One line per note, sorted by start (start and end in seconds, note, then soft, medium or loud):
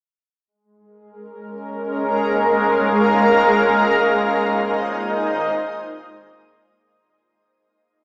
0.47 6.79 G#3 medium
0.85 4.90 A#4 medium
1.09 3.65 C#4 medium
1.94 4.91 F5 medium
3.66 6.80 A#2 medium
3.89 6.79 D#5 medium
4.00 6.80 D#4 medium
4.17 6.79 C5 medium